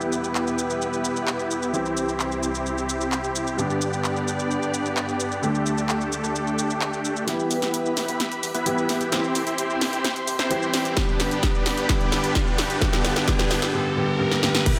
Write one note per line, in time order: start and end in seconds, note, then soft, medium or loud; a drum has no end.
0.00 1.72 E2 medium
0.00 1.72 B2 medium
0.00 1.71 E3 medium
0.00 1.71 G3 medium
0.00 1.72 G3 medium
0.00 1.71 B3 medium
0.00 1.71 E4 medium
0.00 3.55 E4 medium
0.00 1.71 G4 medium
0.00 1.72 G4 medium
0.00 1.72 B4 medium
0.00 shaker soft
0.12 shaker medium
0.24 shaker soft
0.35 clap loud
0.35 shaker soft
0.47 shaker soft
0.59 shaker medium
0.70 shaker soft
0.82 shaker soft
0.93 shaker soft
1.05 shaker medium
1.16 shaker soft
1.27 clap loud
1.27 shaker soft
1.39 shaker soft
1.51 shaker medium
1.62 shaker soft
1.73 3.57 C2 medium
1.73 3.57 C3 medium
1.73 3.55 E3 medium
1.73 3.55 G3 medium
1.73 3.57 G3 medium
1.73 3.56 C4 medium
1.73 3.56 E4 medium
1.73 3.56 G4 medium
1.73 7.24 G4 medium
1.73 3.56 G4 medium
1.73 shaker soft
1.86 shaker soft
1.97 shaker medium
2.09 shaker soft
2.20 clap loud
2.20 shaker soft
2.32 shaker soft
2.43 shaker medium
2.55 shaker soft
2.66 shaker soft
2.78 shaker soft
2.89 shaker medium
3.01 shaker soft
3.12 clap loud
3.12 shaker soft
3.24 shaker soft
3.36 shaker medium
3.47 shaker soft
3.57 5.40 G2 medium
3.57 5.41 G2 medium
3.57 5.40 D3 medium
3.57 5.41 D3 medium
3.57 5.40 G3 medium
3.57 5.40 B3 medium
3.57 5.41 B3 medium
3.57 5.40 D4 medium
3.57 5.40 G4 medium
3.57 5.41 G4 medium
3.57 5.41 D5 medium
3.57 shaker soft
3.70 shaker soft
3.82 shaker medium
3.93 shaker soft
4.04 clap loud
4.04 shaker soft
4.16 shaker soft
4.28 shaker medium
4.39 shaker soft
4.51 shaker soft
4.62 shaker soft
4.74 shaker medium
4.86 shaker soft
4.97 clap loud
4.97 shaker soft
5.09 shaker soft
5.20 shaker medium
5.32 shaker soft
5.42 7.26 D2 medium
5.42 7.24 D3 medium
5.42 7.26 D3 medium
5.42 7.25 G3 medium
5.42 7.26 A3 medium
5.42 7.25 A3 medium
5.42 7.25 D4 medium
5.42 7.25 G4 medium
5.42 7.26 G4 medium
5.42 7.26 A4 medium
5.42 shaker soft
5.55 shaker soft
5.66 shaker medium
5.78 shaker soft
5.89 clap loud
5.89 shaker soft
6.01 shaker soft
6.12 shaker medium
6.24 cross-stick medium
6.24 shaker soft
6.36 shaker soft
6.47 shaker soft
6.59 shaker medium
6.70 shaker soft
6.81 clap loud
6.81 shaker soft
6.93 shaker soft
7.05 shaker medium
7.16 shaker soft
7.26 8.63 E3 medium
7.26 8.63 G3 medium
7.26 7.59 B3 medium
7.26 8.64 B3 medium
7.26 7.59 E4 medium
7.26 7.59 G4 medium
7.26 9.10 G4 medium
7.26 8.64 G4 medium
7.26 9.10 B4 medium
7.26 10.93 E5 medium
7.26 9.10 B5 medium
7.26 snare soft
7.26 closed hi-hat medium
7.26 riser medium
7.26 shaker soft
7.39 shaker soft
7.51 7.69 E2 medium
7.51 open hi-hat loud
7.51 shaker medium
7.62 8.06 B3 medium
7.62 8.06 E4 medium
7.62 8.06 G4 medium
7.62 snare soft
7.62 closed hi-hat medium
7.62 shaker soft
7.74 closed hi-hat medium
7.74 shaker soft
7.86 shaker soft
7.97 8.16 E1 medium
7.97 snare medium
7.97 open hi-hat loud
7.97 shaker medium
8.08 8.21 B3 medium
8.08 8.21 E4 medium
8.08 8.21 G4 medium
8.08 closed hi-hat medium
8.08 shaker soft
8.20 snare soft
8.20 closed hi-hat medium
8.20 shaker soft
8.32 closed hi-hat soft
8.32 shaker soft
8.43 8.52 E2 medium
8.43 open hi-hat loud
8.43 shaker medium
8.54 8.73 E2 medium
8.54 8.86 B3 loud
8.54 8.86 E4 medium
8.54 8.86 B4 loud
8.54 closed hi-hat soft
8.54 shaker soft
8.65 9.09 E3 medium
8.65 9.09 G3 medium
8.65 9.10 B3 medium
8.65 9.10 G4 medium
8.65 closed hi-hat medium
8.65 shaker soft
8.78 shaker soft
8.89 9.08 E2 medium
8.89 9.09 B3 medium
8.89 9.09 E4 medium
8.89 9.09 G4 medium
8.89 snare medium
8.89 open hi-hat loud
8.89 shaker medium
9.01 closed hi-hat medium
9.01 shaker soft
9.12 9.19 E3 medium
9.12 9.19 G3 medium
9.12 9.44 C4 medium
9.12 9.19 C4 medium
9.12 9.44 E4 medium
9.12 9.44 G4 loud
9.12 13.70 G4 medium
9.12 9.19 G4 medium
9.12 10.95 C5 medium
9.12 10.95 C6 medium
9.12 snare medium
9.12 closed hi-hat medium
9.12 shaker soft
9.24 shaker soft
9.35 9.54 C2 loud
9.35 open hi-hat loud
9.35 shaker medium
9.47 9.90 C4 medium
9.47 9.90 E4 medium
9.47 9.90 G4 medium
9.47 closed hi-hat medium
9.47 shaker soft
9.58 closed hi-hat medium
9.58 shaker soft
9.70 shaker soft
9.81 10.00 G1 medium
9.81 snare medium
9.81 open hi-hat loud
9.81 shaker medium
9.93 10.06 C4 medium
9.93 10.06 E4 medium
9.93 10.06 G4 medium
9.93 closed hi-hat medium
9.93 shaker soft
10.04 snare medium
10.04 closed hi-hat medium
10.04 shaker soft
10.16 closed hi-hat soft
10.16 shaker soft
10.27 10.37 C2 medium
10.27 open hi-hat loud
10.27 shaker medium
10.39 10.58 C2 medium
10.39 10.71 C4 loud
10.39 10.71 E4 medium
10.39 10.71 C5 loud
10.39 snare medium
10.39 closed hi-hat soft
10.39 shaker soft
10.50 10.94 E3 medium
10.50 10.94 G3 medium
10.50 10.94 C4 medium
10.50 10.94 G4 loud
10.50 closed hi-hat medium
10.50 shaker soft
10.62 shaker soft
10.74 10.92 C2 loud
10.74 10.94 C4 medium
10.74 10.94 E4 medium
10.74 10.94 G4 medium
10.74 snare medium
10.74 open hi-hat loud
10.74 shaker medium
10.85 closed hi-hat medium
10.85 shaker soft
10.96 11.86 G2 medium
10.96 11.87 D3 medium
10.96 11.87 G3 medium
10.96 11.29 B3 medium
10.96 11.88 B3 medium
10.96 11.88 G4 medium
10.96 12.80 B4 medium
10.96 12.80 D5 medium
10.96 12.80 B5 medium
10.96 kick loud
10.96 snare medium
10.96 closed hi-hat medium
10.96 shaker soft
11.08 shaker soft
11.20 11.39 G1 loud
11.20 snare medium
11.20 open hi-hat loud
11.20 shaker medium
11.31 11.75 B3 medium
11.31 11.75 D4 medium
11.31 11.75 G4 medium
11.31 closed hi-hat soft
11.31 shaker soft
11.43 kick loud
11.43 snare medium
11.43 closed hi-hat medium
11.43 shaker soft
11.55 shaker soft
11.66 11.85 G2 medium
11.66 snare medium
11.66 open hi-hat loud
11.66 shaker medium
11.77 11.87 B3 medium
11.77 11.87 D4 medium
11.77 11.87 G4 medium
11.77 closed hi-hat medium
11.77 shaker soft
11.88 12.79 G2 medium
11.88 12.79 D3 medium
11.88 12.80 G3 medium
11.88 12.21 B3 medium
11.88 12.80 B3 medium
11.88 12.21 D4 medium
11.88 12.21 G4 medium
11.88 12.80 G4 medium
11.88 kick loud
11.88 snare medium
11.88 closed hi-hat medium
11.88 shaker soft
12.01 closed hi-hat soft
12.01 shaker soft
12.12 snare medium
12.12 open hi-hat loud
12.12 shaker medium
12.24 12.43 G1 medium
12.24 12.67 B3 medium
12.24 12.67 D4 medium
12.24 12.67 G4 medium
12.24 closed hi-hat soft
12.24 shaker soft
12.35 kick loud
12.35 snare medium
12.35 closed hi-hat medium
12.35 shaker soft
12.47 shaker soft
12.58 12.77 G1 loud
12.58 snare medium
12.58 open hi-hat loud
12.58 shaker medium
12.70 12.80 B3 medium
12.70 12.80 D4 medium
12.70 12.80 G4 medium
12.70 closed hi-hat medium
12.70 shaker soft
12.80 13.25 G2 medium
12.80 13.26 D3 medium
12.80 13.26 G3 medium
12.80 13.13 B3 medium
12.80 13.26 B3 medium
12.80 13.13 D4 medium
12.80 13.13 G4 loud
12.80 13.26 G4 medium
12.80 13.73 A4 medium
12.80 13.73 D5 medium
12.80 13.73 A5 medium
12.80 kick loud
12.80 snare medium
12.80 closed hi-hat medium
12.80 shaker soft
12.93 snare medium
12.93 shaker soft
13.05 13.23 D2 loud
13.05 snare medium
13.05 open hi-hat loud
13.05 shaker medium
13.16 13.26 B3 medium
13.16 13.26 D4 medium
13.16 13.26 G4 medium
13.16 snare medium
13.16 closed hi-hat soft
13.16 shaker soft
13.26 13.71 G2 medium
13.26 13.72 D3 medium
13.26 13.72 G3 medium
13.26 13.60 B3 medium
13.26 13.72 B3 medium
13.26 13.60 D4 medium
13.26 13.59 G4 loud
13.26 13.73 G4 medium
13.26 kick loud
13.26 snare medium
13.26 closed hi-hat medium
13.26 shaker soft
13.39 snare medium
13.39 closed hi-hat soft
13.39 shaker soft
13.51 snare loud
13.51 open hi-hat loud
13.51 shaker medium
13.62 13.72 B3 medium
13.62 13.72 D4 medium
13.62 13.72 G4 medium
13.62 snare medium
13.62 closed hi-hat medium
13.62 shaker soft
13.73 13.94 G2 medium
13.73 13.95 D3 medium
13.73 13.95 G3 medium
13.73 13.95 B3 medium
13.73 13.96 G4 medium
13.96 14.17 G2 medium
13.96 14.18 D3 medium
13.96 14.18 G3 medium
13.96 14.18 B3 medium
13.96 14.19 G4 medium
14.19 14.40 G2 medium
14.19 14.41 D3 medium
14.19 14.41 G3 medium
14.19 14.42 B3 medium
14.19 14.42 G4 medium
14.32 snare medium
14.42 14.64 G2 medium
14.42 14.64 D3 medium
14.42 14.64 G3 medium
14.42 14.65 B3 medium
14.42 14.65 G4 medium
14.42 snare medium
14.55 snare medium
14.66 14.79 B3 medium
14.66 14.79 E4 medium
14.66 14.79 G4 medium
14.66 14.79 G4 loud
14.66 14.79 B4 medium
14.66 14.79 E5 medium
14.66 14.79 B5 medium
14.66 kick loud
14.66 closed hi-hat medium
14.66 crash loud
14.66 ride medium
14.66 sub drop medium
14.66 shaker soft